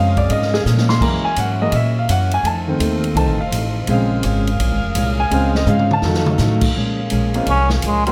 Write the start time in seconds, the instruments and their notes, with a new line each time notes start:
Already playing: upright bass F#2, steel-string acoustic guitar A#2 F3 G#3 C#4, grand piano C#3 G#3 C4 F5, saxophone section G#4 A#4 F5
0.17 grand piano D5, kick, ride
0.29 upright bass G#2, steel-string acoustic guitar A#2 F3 G#3 C#4, grand piano D#5, ride
0.42 snare
0.54 grand piano G#4, snare
0.65 steel-string acoustic guitar A#2 F3 G#3 C#4, upright bass A#2, snare, hi-hat pedal
0.78 snare
0.89 grand piano C6, snare
1.00 steel-string acoustic guitar F#2 E3 A#3 C#4, upright bass F#2, grand piano E3 G#3 A#3 A#5, saxophone section F#4 E5, kick, crash
1.24 grand piano G#5, muted upright bass stroke
1.36 steel-string acoustic guitar F#2 E3 A#3 C#4, upright bass G#2, grand piano F#5, hi-hat pedal, ride
1.61 grand piano E3 G#3 A#3 D#5
1.72 steel-string acoustic guitar F#2 E3 A#3 C#4, upright bass A#2, grand piano E5, ride
1.99 grand piano F5
2.08 steel-string acoustic guitar F#2 E3 A#3 C#4, upright bass F#2, grand piano F#5, hi-hat pedal, ride
2.31 grand piano G#5, ride
2.43 steel-string acoustic guitar F2 D#3 A3 C4, upright bass F2, saxophone section C4 F4 A4 D#5, ride
2.47 grand piano A5
2.68 grand piano D#3 A3 C4
2.79 upright bass D#2, steel-string acoustic guitar F2 D#3 A3 C4, hi-hat pedal, ride
3.04 ride
3.14 upright bass C2, steel-string acoustic guitar F2 D#3 A3 C4, grand piano D#3 A3 C4 A5, ride
3.27 upright bass A1
3.39 upright bass F1, grand piano F5
3.51 upright bass A1, steel-string acoustic guitar F2 D#3 A3 C4, hi-hat pedal, ride
3.87 upright bass A#1, steel-string acoustic guitar A#2 G#3 C#4 F4, grand piano C#3 G#3 C4 F5, saxophone section G#4 A#4 F5, ride
4.23 upright bass G#1, steel-string acoustic guitar A#2 G#3 C#4 F4, hi-hat pedal, ride
4.47 ride
4.59 upright bass A#1, steel-string acoustic guitar A#2 G#3 C#4 F4, ride
4.71 upright bass G#1
4.85 upright bass F1
4.95 upright bass C2, steel-string acoustic guitar A#2 G#3 C#4 F4, hi-hat pedal, ride
5.20 grand piano G#5
5.30 upright bass C#2, steel-string acoustic guitar A#2 G#3 C#4 F4, grand piano C#3 G#3 C4, ride
5.55 grand piano D#5, snare
5.66 upright bass G#2, steel-string acoustic guitar A#2 G#3 C#4 F4, grand piano F5, hi-hat pedal, mid tom
5.79 mid tom
5.91 grand piano A5, mid tom
6.02 upright bass F2, grand piano D#3 F#3 A3, steel-string acoustic guitar F3 A3 D#4 F#4, saxophone section D#4 F#4 A4, snare
6.14 snare
6.26 mid tom
6.38 upright bass A2, steel-string acoustic guitar F3 A3 D#4 F#4, snare, hi-hat pedal
6.61 kick, crash
6.75 steel-string acoustic guitar A#2 F3 G#3 C#4, upright bass A#2, saxophone section C#4 G#4 A#4 F5
7.10 upright bass A#1, steel-string acoustic guitar A#2 F3 G#3 C#4, hi-hat pedal, ride
7.34 grand piano G#3 A#3 C4 C#4 F4, ride
7.46 upright bass C2, steel-string acoustic guitar A#2 F3 G#3 C#4, trombone C#4, ride
7.69 trombone F3, snare
7.82 upright bass C#2, steel-string acoustic guitar A#2 F3 G#3 C#4, trombone G#3, hi-hat pedal, ride
8.06 grand piano F#3 A#3 C#4 D#4 F#4, trombone C4, ride